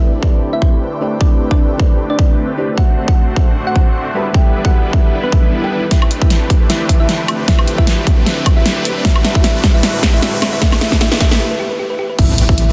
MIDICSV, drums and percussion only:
0, 0, Header, 1, 2, 480
1, 0, Start_track
1, 0, Tempo, 392157
1, 1477, Time_signature, 4, 2, 24, 8
1, 15577, End_track
2, 0, Start_track
2, 0, Title_t, "Drums"
2, 277, Note_on_c, 9, 36, 107
2, 399, Note_off_c, 9, 36, 0
2, 757, Note_on_c, 9, 36, 60
2, 879, Note_off_c, 9, 36, 0
2, 1477, Note_on_c, 9, 36, 124
2, 1599, Note_off_c, 9, 36, 0
2, 1849, Note_on_c, 9, 36, 60
2, 1971, Note_off_c, 9, 36, 0
2, 2197, Note_on_c, 9, 36, 110
2, 2320, Note_off_c, 9, 36, 0
2, 2677, Note_on_c, 9, 36, 106
2, 2800, Note_off_c, 9, 36, 0
2, 3398, Note_on_c, 9, 36, 115
2, 3520, Note_off_c, 9, 36, 0
2, 3770, Note_on_c, 9, 36, 112
2, 3892, Note_off_c, 9, 36, 0
2, 4118, Note_on_c, 9, 36, 112
2, 4240, Note_off_c, 9, 36, 0
2, 4598, Note_on_c, 9, 36, 63
2, 4720, Note_off_c, 9, 36, 0
2, 5317, Note_on_c, 9, 36, 125
2, 5439, Note_off_c, 9, 36, 0
2, 5689, Note_on_c, 9, 36, 65
2, 5811, Note_off_c, 9, 36, 0
2, 6037, Note_on_c, 9, 36, 114
2, 6160, Note_off_c, 9, 36, 0
2, 6517, Note_on_c, 9, 36, 106
2, 6639, Note_off_c, 9, 36, 0
2, 7235, Note_on_c, 9, 38, 50
2, 7235, Note_on_c, 9, 42, 77
2, 7237, Note_on_c, 9, 36, 114
2, 7358, Note_off_c, 9, 38, 0
2, 7358, Note_off_c, 9, 42, 0
2, 7359, Note_off_c, 9, 36, 0
2, 7368, Note_on_c, 9, 76, 80
2, 7476, Note_on_c, 9, 42, 64
2, 7491, Note_off_c, 9, 76, 0
2, 7599, Note_off_c, 9, 42, 0
2, 7608, Note_on_c, 9, 36, 108
2, 7716, Note_on_c, 9, 38, 52
2, 7716, Note_on_c, 9, 42, 76
2, 7731, Note_off_c, 9, 36, 0
2, 7838, Note_off_c, 9, 38, 0
2, 7838, Note_off_c, 9, 42, 0
2, 7956, Note_on_c, 9, 36, 110
2, 7957, Note_on_c, 9, 42, 57
2, 8079, Note_off_c, 9, 36, 0
2, 8079, Note_off_c, 9, 42, 0
2, 8198, Note_on_c, 9, 38, 53
2, 8198, Note_on_c, 9, 42, 73
2, 8320, Note_off_c, 9, 38, 0
2, 8320, Note_off_c, 9, 42, 0
2, 8436, Note_on_c, 9, 36, 58
2, 8437, Note_on_c, 9, 42, 64
2, 8558, Note_off_c, 9, 36, 0
2, 8560, Note_off_c, 9, 42, 0
2, 8676, Note_on_c, 9, 38, 56
2, 8676, Note_on_c, 9, 42, 74
2, 8798, Note_off_c, 9, 38, 0
2, 8798, Note_off_c, 9, 42, 0
2, 8915, Note_on_c, 9, 42, 62
2, 8915, Note_on_c, 9, 76, 85
2, 9038, Note_off_c, 9, 42, 0
2, 9038, Note_off_c, 9, 76, 0
2, 9155, Note_on_c, 9, 38, 59
2, 9155, Note_on_c, 9, 42, 76
2, 9156, Note_on_c, 9, 36, 110
2, 9278, Note_off_c, 9, 36, 0
2, 9278, Note_off_c, 9, 38, 0
2, 9278, Note_off_c, 9, 42, 0
2, 9286, Note_on_c, 9, 76, 80
2, 9394, Note_on_c, 9, 42, 64
2, 9408, Note_off_c, 9, 76, 0
2, 9517, Note_off_c, 9, 42, 0
2, 9527, Note_on_c, 9, 36, 61
2, 9635, Note_on_c, 9, 38, 60
2, 9635, Note_on_c, 9, 42, 73
2, 9650, Note_off_c, 9, 36, 0
2, 9757, Note_off_c, 9, 38, 0
2, 9757, Note_off_c, 9, 42, 0
2, 9875, Note_on_c, 9, 36, 108
2, 9876, Note_on_c, 9, 42, 57
2, 9998, Note_off_c, 9, 36, 0
2, 9999, Note_off_c, 9, 42, 0
2, 10116, Note_on_c, 9, 38, 66
2, 10116, Note_on_c, 9, 42, 72
2, 10238, Note_off_c, 9, 38, 0
2, 10238, Note_off_c, 9, 42, 0
2, 10355, Note_on_c, 9, 36, 105
2, 10356, Note_on_c, 9, 42, 63
2, 10356, Note_on_c, 9, 76, 80
2, 10478, Note_off_c, 9, 36, 0
2, 10479, Note_off_c, 9, 42, 0
2, 10479, Note_off_c, 9, 76, 0
2, 10596, Note_on_c, 9, 38, 71
2, 10596, Note_on_c, 9, 42, 77
2, 10718, Note_off_c, 9, 38, 0
2, 10718, Note_off_c, 9, 42, 0
2, 10836, Note_on_c, 9, 42, 62
2, 10958, Note_off_c, 9, 42, 0
2, 11075, Note_on_c, 9, 36, 110
2, 11075, Note_on_c, 9, 38, 79
2, 11075, Note_on_c, 9, 42, 76
2, 11198, Note_off_c, 9, 36, 0
2, 11198, Note_off_c, 9, 38, 0
2, 11198, Note_off_c, 9, 42, 0
2, 11207, Note_on_c, 9, 76, 83
2, 11316, Note_on_c, 9, 38, 74
2, 11316, Note_on_c, 9, 42, 67
2, 11329, Note_off_c, 9, 76, 0
2, 11439, Note_off_c, 9, 38, 0
2, 11439, Note_off_c, 9, 42, 0
2, 11447, Note_on_c, 9, 36, 99
2, 11555, Note_on_c, 9, 38, 75
2, 11555, Note_on_c, 9, 42, 78
2, 11569, Note_off_c, 9, 36, 0
2, 11677, Note_off_c, 9, 38, 0
2, 11677, Note_off_c, 9, 42, 0
2, 11795, Note_on_c, 9, 36, 101
2, 11796, Note_on_c, 9, 38, 78
2, 11796, Note_on_c, 9, 42, 61
2, 11918, Note_off_c, 9, 36, 0
2, 11918, Note_off_c, 9, 38, 0
2, 11918, Note_off_c, 9, 42, 0
2, 12035, Note_on_c, 9, 38, 83
2, 12035, Note_on_c, 9, 42, 79
2, 12158, Note_off_c, 9, 38, 0
2, 12158, Note_off_c, 9, 42, 0
2, 12275, Note_on_c, 9, 36, 58
2, 12276, Note_on_c, 9, 38, 86
2, 12276, Note_on_c, 9, 42, 67
2, 12398, Note_off_c, 9, 36, 0
2, 12399, Note_off_c, 9, 38, 0
2, 12399, Note_off_c, 9, 42, 0
2, 12515, Note_on_c, 9, 38, 89
2, 12515, Note_on_c, 9, 42, 81
2, 12637, Note_off_c, 9, 38, 0
2, 12637, Note_off_c, 9, 42, 0
2, 12755, Note_on_c, 9, 38, 91
2, 12755, Note_on_c, 9, 42, 61
2, 12755, Note_on_c, 9, 76, 86
2, 12877, Note_off_c, 9, 38, 0
2, 12877, Note_off_c, 9, 42, 0
2, 12877, Note_off_c, 9, 76, 0
2, 12995, Note_on_c, 9, 36, 116
2, 12995, Note_on_c, 9, 38, 92
2, 12995, Note_on_c, 9, 42, 83
2, 13117, Note_off_c, 9, 38, 0
2, 13117, Note_off_c, 9, 42, 0
2, 13118, Note_off_c, 9, 36, 0
2, 13126, Note_on_c, 9, 38, 79
2, 13126, Note_on_c, 9, 76, 78
2, 13235, Note_off_c, 9, 38, 0
2, 13235, Note_on_c, 9, 38, 97
2, 13235, Note_on_c, 9, 42, 67
2, 13249, Note_off_c, 9, 76, 0
2, 13358, Note_off_c, 9, 38, 0
2, 13358, Note_off_c, 9, 42, 0
2, 13367, Note_on_c, 9, 36, 60
2, 13367, Note_on_c, 9, 38, 84
2, 13475, Note_off_c, 9, 38, 0
2, 13475, Note_on_c, 9, 38, 96
2, 13475, Note_on_c, 9, 42, 78
2, 13489, Note_off_c, 9, 36, 0
2, 13597, Note_off_c, 9, 38, 0
2, 13597, Note_off_c, 9, 42, 0
2, 13607, Note_on_c, 9, 38, 93
2, 13715, Note_on_c, 9, 36, 105
2, 13716, Note_off_c, 9, 38, 0
2, 13716, Note_on_c, 9, 38, 99
2, 13716, Note_on_c, 9, 42, 64
2, 13838, Note_off_c, 9, 36, 0
2, 13838, Note_off_c, 9, 38, 0
2, 13838, Note_off_c, 9, 42, 0
2, 13848, Note_on_c, 9, 38, 88
2, 13971, Note_off_c, 9, 38, 0
2, 14915, Note_on_c, 9, 42, 84
2, 14915, Note_on_c, 9, 49, 105
2, 14916, Note_on_c, 9, 36, 115
2, 15038, Note_off_c, 9, 42, 0
2, 15038, Note_off_c, 9, 49, 0
2, 15039, Note_off_c, 9, 36, 0
2, 15156, Note_on_c, 9, 42, 71
2, 15278, Note_off_c, 9, 42, 0
2, 15288, Note_on_c, 9, 36, 110
2, 15396, Note_on_c, 9, 42, 80
2, 15410, Note_off_c, 9, 36, 0
2, 15518, Note_off_c, 9, 42, 0
2, 15577, End_track
0, 0, End_of_file